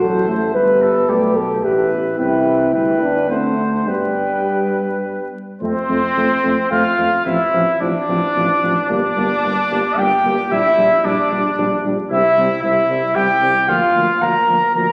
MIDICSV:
0, 0, Header, 1, 6, 480
1, 0, Start_track
1, 0, Key_signature, 1, "major"
1, 0, Tempo, 544465
1, 484, Time_signature, 3, 2, 24, 8
1, 2412, Tempo, 575264
1, 4812, Key_signature, -1, "major"
1, 4812, Tempo, 548446
1, 7212, Tempo, 537634
1, 10092, Tempo, 527704
1, 13130, End_track
2, 0, Start_track
2, 0, Title_t, "Trumpet"
2, 0, Program_c, 0, 56
2, 12, Note_on_c, 0, 78, 59
2, 243, Note_off_c, 0, 78, 0
2, 250, Note_on_c, 0, 76, 48
2, 960, Note_on_c, 0, 74, 55
2, 973, Note_off_c, 0, 76, 0
2, 1199, Note_off_c, 0, 74, 0
2, 1204, Note_on_c, 0, 74, 53
2, 1313, Note_off_c, 0, 74, 0
2, 1447, Note_on_c, 0, 76, 56
2, 1916, Note_off_c, 0, 76, 0
2, 1930, Note_on_c, 0, 79, 58
2, 2381, Note_off_c, 0, 79, 0
2, 2415, Note_on_c, 0, 79, 52
2, 2875, Note_off_c, 0, 79, 0
2, 2886, Note_on_c, 0, 78, 53
2, 3355, Note_off_c, 0, 78, 0
2, 3364, Note_on_c, 0, 79, 59
2, 4556, Note_off_c, 0, 79, 0
2, 4814, Note_on_c, 0, 72, 94
2, 5738, Note_off_c, 0, 72, 0
2, 5774, Note_on_c, 0, 77, 96
2, 6239, Note_off_c, 0, 77, 0
2, 6250, Note_on_c, 0, 76, 93
2, 6723, Note_off_c, 0, 76, 0
2, 6738, Note_on_c, 0, 74, 93
2, 7678, Note_off_c, 0, 74, 0
2, 7701, Note_on_c, 0, 74, 105
2, 8662, Note_on_c, 0, 79, 97
2, 8675, Note_off_c, 0, 74, 0
2, 9137, Note_off_c, 0, 79, 0
2, 9142, Note_on_c, 0, 76, 109
2, 9614, Note_on_c, 0, 74, 86
2, 9627, Note_off_c, 0, 76, 0
2, 10328, Note_off_c, 0, 74, 0
2, 10571, Note_on_c, 0, 76, 107
2, 11014, Note_off_c, 0, 76, 0
2, 11048, Note_on_c, 0, 76, 93
2, 11520, Note_on_c, 0, 79, 97
2, 11534, Note_off_c, 0, 76, 0
2, 12006, Note_on_c, 0, 77, 99
2, 12020, Note_off_c, 0, 79, 0
2, 12496, Note_on_c, 0, 82, 91
2, 12510, Note_off_c, 0, 77, 0
2, 12965, Note_off_c, 0, 82, 0
2, 12970, Note_on_c, 0, 82, 81
2, 13130, Note_off_c, 0, 82, 0
2, 13130, End_track
3, 0, Start_track
3, 0, Title_t, "Trumpet"
3, 0, Program_c, 1, 56
3, 0, Note_on_c, 1, 72, 54
3, 481, Note_on_c, 1, 71, 58
3, 494, Note_off_c, 1, 72, 0
3, 719, Note_on_c, 1, 69, 57
3, 732, Note_off_c, 1, 71, 0
3, 961, Note_on_c, 1, 67, 54
3, 974, Note_off_c, 1, 69, 0
3, 1441, Note_off_c, 1, 67, 0
3, 1447, Note_on_c, 1, 71, 54
3, 1915, Note_off_c, 1, 71, 0
3, 1922, Note_on_c, 1, 71, 55
3, 2376, Note_off_c, 1, 71, 0
3, 2414, Note_on_c, 1, 71, 52
3, 2875, Note_off_c, 1, 71, 0
3, 2890, Note_on_c, 1, 72, 55
3, 3362, Note_on_c, 1, 71, 56
3, 3374, Note_off_c, 1, 72, 0
3, 4579, Note_off_c, 1, 71, 0
3, 4816, Note_on_c, 1, 60, 84
3, 5739, Note_off_c, 1, 60, 0
3, 5772, Note_on_c, 1, 65, 84
3, 6238, Note_off_c, 1, 65, 0
3, 6248, Note_on_c, 1, 64, 81
3, 6722, Note_off_c, 1, 64, 0
3, 6731, Note_on_c, 1, 62, 77
3, 7674, Note_off_c, 1, 62, 0
3, 7699, Note_on_c, 1, 62, 92
3, 8642, Note_off_c, 1, 62, 0
3, 8663, Note_on_c, 1, 67, 86
3, 9130, Note_off_c, 1, 67, 0
3, 9145, Note_on_c, 1, 64, 93
3, 9616, Note_on_c, 1, 62, 76
3, 9630, Note_off_c, 1, 64, 0
3, 10329, Note_off_c, 1, 62, 0
3, 10567, Note_on_c, 1, 64, 92
3, 11012, Note_off_c, 1, 64, 0
3, 11044, Note_on_c, 1, 64, 85
3, 11518, Note_on_c, 1, 67, 82
3, 11532, Note_off_c, 1, 64, 0
3, 12003, Note_off_c, 1, 67, 0
3, 12010, Note_on_c, 1, 65, 81
3, 12484, Note_off_c, 1, 65, 0
3, 12490, Note_on_c, 1, 70, 72
3, 12961, Note_off_c, 1, 70, 0
3, 12974, Note_on_c, 1, 70, 76
3, 13130, Note_off_c, 1, 70, 0
3, 13130, End_track
4, 0, Start_track
4, 0, Title_t, "French horn"
4, 0, Program_c, 2, 60
4, 10, Note_on_c, 2, 69, 80
4, 474, Note_off_c, 2, 69, 0
4, 481, Note_on_c, 2, 71, 91
4, 1201, Note_on_c, 2, 69, 81
4, 1214, Note_off_c, 2, 71, 0
4, 1446, Note_on_c, 2, 67, 70
4, 1460, Note_off_c, 2, 69, 0
4, 1685, Note_off_c, 2, 67, 0
4, 1921, Note_on_c, 2, 64, 87
4, 2612, Note_off_c, 2, 64, 0
4, 2648, Note_on_c, 2, 62, 78
4, 2878, Note_off_c, 2, 62, 0
4, 2884, Note_on_c, 2, 57, 72
4, 3364, Note_on_c, 2, 55, 66
4, 3376, Note_off_c, 2, 57, 0
4, 4580, Note_off_c, 2, 55, 0
4, 4811, Note_on_c, 2, 60, 67
4, 4919, Note_off_c, 2, 60, 0
4, 5053, Note_on_c, 2, 60, 58
4, 5161, Note_off_c, 2, 60, 0
4, 5292, Note_on_c, 2, 60, 52
4, 5400, Note_off_c, 2, 60, 0
4, 5537, Note_on_c, 2, 60, 61
4, 5644, Note_off_c, 2, 60, 0
4, 5774, Note_on_c, 2, 60, 57
4, 5880, Note_off_c, 2, 60, 0
4, 6012, Note_on_c, 2, 60, 54
4, 6119, Note_off_c, 2, 60, 0
4, 6250, Note_on_c, 2, 60, 63
4, 6358, Note_off_c, 2, 60, 0
4, 6490, Note_on_c, 2, 60, 57
4, 6599, Note_off_c, 2, 60, 0
4, 6730, Note_on_c, 2, 60, 58
4, 6839, Note_off_c, 2, 60, 0
4, 6972, Note_on_c, 2, 60, 61
4, 7080, Note_off_c, 2, 60, 0
4, 7211, Note_on_c, 2, 60, 57
4, 7320, Note_off_c, 2, 60, 0
4, 7450, Note_on_c, 2, 60, 58
4, 7559, Note_off_c, 2, 60, 0
4, 7692, Note_on_c, 2, 58, 68
4, 7802, Note_off_c, 2, 58, 0
4, 7935, Note_on_c, 2, 58, 65
4, 8044, Note_off_c, 2, 58, 0
4, 8181, Note_on_c, 2, 58, 63
4, 8289, Note_off_c, 2, 58, 0
4, 8419, Note_on_c, 2, 58, 71
4, 8527, Note_off_c, 2, 58, 0
4, 8663, Note_on_c, 2, 58, 61
4, 8770, Note_off_c, 2, 58, 0
4, 8904, Note_on_c, 2, 58, 62
4, 9011, Note_off_c, 2, 58, 0
4, 9141, Note_on_c, 2, 62, 66
4, 9247, Note_off_c, 2, 62, 0
4, 9378, Note_on_c, 2, 62, 66
4, 9485, Note_off_c, 2, 62, 0
4, 9616, Note_on_c, 2, 62, 67
4, 9723, Note_off_c, 2, 62, 0
4, 9864, Note_on_c, 2, 62, 69
4, 9969, Note_off_c, 2, 62, 0
4, 10101, Note_on_c, 2, 62, 69
4, 10208, Note_off_c, 2, 62, 0
4, 10342, Note_on_c, 2, 62, 63
4, 10448, Note_off_c, 2, 62, 0
4, 10582, Note_on_c, 2, 60, 67
4, 10687, Note_off_c, 2, 60, 0
4, 10821, Note_on_c, 2, 60, 71
4, 10926, Note_off_c, 2, 60, 0
4, 11059, Note_on_c, 2, 60, 64
4, 11163, Note_off_c, 2, 60, 0
4, 11296, Note_on_c, 2, 60, 66
4, 11400, Note_off_c, 2, 60, 0
4, 11526, Note_on_c, 2, 60, 64
4, 11633, Note_off_c, 2, 60, 0
4, 11768, Note_on_c, 2, 60, 53
4, 11876, Note_off_c, 2, 60, 0
4, 12009, Note_on_c, 2, 58, 66
4, 12118, Note_off_c, 2, 58, 0
4, 12251, Note_on_c, 2, 58, 59
4, 12359, Note_off_c, 2, 58, 0
4, 12489, Note_on_c, 2, 58, 56
4, 12598, Note_off_c, 2, 58, 0
4, 12735, Note_on_c, 2, 58, 54
4, 12842, Note_off_c, 2, 58, 0
4, 12971, Note_on_c, 2, 58, 54
4, 13079, Note_off_c, 2, 58, 0
4, 13130, End_track
5, 0, Start_track
5, 0, Title_t, "Trombone"
5, 0, Program_c, 3, 57
5, 9, Note_on_c, 3, 54, 62
5, 237, Note_off_c, 3, 54, 0
5, 242, Note_on_c, 3, 57, 58
5, 350, Note_off_c, 3, 57, 0
5, 478, Note_on_c, 3, 55, 57
5, 961, Note_on_c, 3, 57, 63
5, 975, Note_off_c, 3, 55, 0
5, 1201, Note_on_c, 3, 59, 64
5, 1214, Note_off_c, 3, 57, 0
5, 1924, Note_on_c, 3, 60, 60
5, 1937, Note_off_c, 3, 59, 0
5, 2413, Note_on_c, 3, 55, 51
5, 2425, Note_off_c, 3, 60, 0
5, 2647, Note_on_c, 3, 59, 58
5, 2660, Note_off_c, 3, 55, 0
5, 2874, Note_off_c, 3, 59, 0
5, 2879, Note_on_c, 3, 60, 61
5, 3109, Note_off_c, 3, 60, 0
5, 3114, Note_on_c, 3, 62, 56
5, 3353, Note_off_c, 3, 62, 0
5, 3358, Note_on_c, 3, 59, 56
5, 4552, Note_off_c, 3, 59, 0
5, 4810, Note_on_c, 3, 57, 60
5, 4918, Note_off_c, 3, 57, 0
5, 5047, Note_on_c, 3, 57, 57
5, 5157, Note_off_c, 3, 57, 0
5, 5291, Note_on_c, 3, 57, 57
5, 5399, Note_off_c, 3, 57, 0
5, 5534, Note_on_c, 3, 57, 57
5, 5642, Note_off_c, 3, 57, 0
5, 5771, Note_on_c, 3, 57, 63
5, 5878, Note_off_c, 3, 57, 0
5, 6007, Note_on_c, 3, 57, 55
5, 6115, Note_off_c, 3, 57, 0
5, 6246, Note_on_c, 3, 53, 63
5, 6355, Note_off_c, 3, 53, 0
5, 6490, Note_on_c, 3, 53, 54
5, 6599, Note_off_c, 3, 53, 0
5, 6733, Note_on_c, 3, 53, 58
5, 6841, Note_off_c, 3, 53, 0
5, 6978, Note_on_c, 3, 53, 60
5, 7084, Note_off_c, 3, 53, 0
5, 7212, Note_on_c, 3, 53, 61
5, 7321, Note_off_c, 3, 53, 0
5, 7457, Note_on_c, 3, 53, 56
5, 7564, Note_off_c, 3, 53, 0
5, 7693, Note_on_c, 3, 55, 62
5, 7802, Note_off_c, 3, 55, 0
5, 7935, Note_on_c, 3, 55, 61
5, 8044, Note_off_c, 3, 55, 0
5, 8178, Note_on_c, 3, 55, 61
5, 8286, Note_off_c, 3, 55, 0
5, 8416, Note_on_c, 3, 55, 62
5, 8525, Note_off_c, 3, 55, 0
5, 8654, Note_on_c, 3, 55, 64
5, 8763, Note_off_c, 3, 55, 0
5, 8893, Note_on_c, 3, 55, 69
5, 9002, Note_off_c, 3, 55, 0
5, 9132, Note_on_c, 3, 55, 66
5, 9240, Note_off_c, 3, 55, 0
5, 9369, Note_on_c, 3, 55, 62
5, 9477, Note_off_c, 3, 55, 0
5, 9607, Note_on_c, 3, 55, 69
5, 9716, Note_off_c, 3, 55, 0
5, 9849, Note_on_c, 3, 55, 65
5, 9958, Note_off_c, 3, 55, 0
5, 10095, Note_on_c, 3, 55, 67
5, 10203, Note_off_c, 3, 55, 0
5, 10338, Note_on_c, 3, 55, 64
5, 10444, Note_off_c, 3, 55, 0
5, 10576, Note_on_c, 3, 55, 65
5, 10682, Note_off_c, 3, 55, 0
5, 10813, Note_on_c, 3, 55, 61
5, 10919, Note_off_c, 3, 55, 0
5, 11052, Note_on_c, 3, 55, 63
5, 11158, Note_off_c, 3, 55, 0
5, 11288, Note_on_c, 3, 55, 57
5, 11393, Note_off_c, 3, 55, 0
5, 11522, Note_on_c, 3, 55, 66
5, 11629, Note_off_c, 3, 55, 0
5, 11761, Note_on_c, 3, 55, 57
5, 11871, Note_off_c, 3, 55, 0
5, 12004, Note_on_c, 3, 53, 57
5, 12114, Note_off_c, 3, 53, 0
5, 12246, Note_on_c, 3, 53, 53
5, 12356, Note_off_c, 3, 53, 0
5, 12488, Note_on_c, 3, 53, 54
5, 12596, Note_off_c, 3, 53, 0
5, 12725, Note_on_c, 3, 53, 52
5, 12835, Note_off_c, 3, 53, 0
5, 12968, Note_on_c, 3, 53, 54
5, 13077, Note_off_c, 3, 53, 0
5, 13130, End_track
6, 0, Start_track
6, 0, Title_t, "Tuba"
6, 0, Program_c, 4, 58
6, 13, Note_on_c, 4, 33, 60
6, 476, Note_off_c, 4, 33, 0
6, 481, Note_on_c, 4, 31, 61
6, 949, Note_off_c, 4, 31, 0
6, 956, Note_on_c, 4, 35, 60
6, 1432, Note_off_c, 4, 35, 0
6, 1440, Note_on_c, 4, 33, 54
6, 1912, Note_off_c, 4, 33, 0
6, 1923, Note_on_c, 4, 36, 59
6, 2410, Note_on_c, 4, 38, 58
6, 2423, Note_off_c, 4, 36, 0
6, 3359, Note_on_c, 4, 43, 51
6, 3372, Note_off_c, 4, 38, 0
6, 4578, Note_off_c, 4, 43, 0
6, 4813, Note_on_c, 4, 41, 64
6, 4920, Note_off_c, 4, 41, 0
6, 5055, Note_on_c, 4, 41, 65
6, 5162, Note_off_c, 4, 41, 0
6, 5295, Note_on_c, 4, 41, 61
6, 5403, Note_off_c, 4, 41, 0
6, 5537, Note_on_c, 4, 41, 60
6, 5643, Note_off_c, 4, 41, 0
6, 5775, Note_on_c, 4, 41, 62
6, 5881, Note_off_c, 4, 41, 0
6, 6011, Note_on_c, 4, 41, 58
6, 6118, Note_off_c, 4, 41, 0
6, 6248, Note_on_c, 4, 33, 62
6, 6357, Note_off_c, 4, 33, 0
6, 6492, Note_on_c, 4, 33, 66
6, 6600, Note_off_c, 4, 33, 0
6, 6731, Note_on_c, 4, 33, 66
6, 6840, Note_off_c, 4, 33, 0
6, 6974, Note_on_c, 4, 33, 61
6, 7081, Note_off_c, 4, 33, 0
6, 7218, Note_on_c, 4, 33, 69
6, 7325, Note_off_c, 4, 33, 0
6, 7454, Note_on_c, 4, 33, 62
6, 7562, Note_off_c, 4, 33, 0
6, 7696, Note_on_c, 4, 31, 73
6, 7805, Note_off_c, 4, 31, 0
6, 7936, Note_on_c, 4, 31, 73
6, 8045, Note_off_c, 4, 31, 0
6, 8174, Note_on_c, 4, 31, 72
6, 8283, Note_off_c, 4, 31, 0
6, 8418, Note_on_c, 4, 31, 68
6, 8526, Note_off_c, 4, 31, 0
6, 8656, Note_on_c, 4, 31, 75
6, 8764, Note_off_c, 4, 31, 0
6, 8895, Note_on_c, 4, 31, 66
6, 9004, Note_off_c, 4, 31, 0
6, 9135, Note_on_c, 4, 34, 72
6, 9243, Note_off_c, 4, 34, 0
6, 9370, Note_on_c, 4, 34, 73
6, 9478, Note_off_c, 4, 34, 0
6, 9611, Note_on_c, 4, 34, 77
6, 9719, Note_off_c, 4, 34, 0
6, 9854, Note_on_c, 4, 34, 70
6, 9962, Note_off_c, 4, 34, 0
6, 10091, Note_on_c, 4, 34, 76
6, 10200, Note_off_c, 4, 34, 0
6, 10332, Note_on_c, 4, 34, 66
6, 10440, Note_off_c, 4, 34, 0
6, 10567, Note_on_c, 4, 36, 80
6, 10675, Note_off_c, 4, 36, 0
6, 10811, Note_on_c, 4, 36, 77
6, 10918, Note_off_c, 4, 36, 0
6, 11050, Note_on_c, 4, 36, 75
6, 11156, Note_off_c, 4, 36, 0
6, 11286, Note_on_c, 4, 36, 67
6, 11392, Note_off_c, 4, 36, 0
6, 11520, Note_on_c, 4, 36, 68
6, 11628, Note_off_c, 4, 36, 0
6, 11760, Note_on_c, 4, 36, 61
6, 11870, Note_off_c, 4, 36, 0
6, 12005, Note_on_c, 4, 38, 68
6, 12115, Note_off_c, 4, 38, 0
6, 12252, Note_on_c, 4, 38, 66
6, 12360, Note_off_c, 4, 38, 0
6, 12489, Note_on_c, 4, 38, 66
6, 12598, Note_off_c, 4, 38, 0
6, 12731, Note_on_c, 4, 38, 60
6, 12839, Note_off_c, 4, 38, 0
6, 12971, Note_on_c, 4, 38, 63
6, 13080, Note_off_c, 4, 38, 0
6, 13130, End_track
0, 0, End_of_file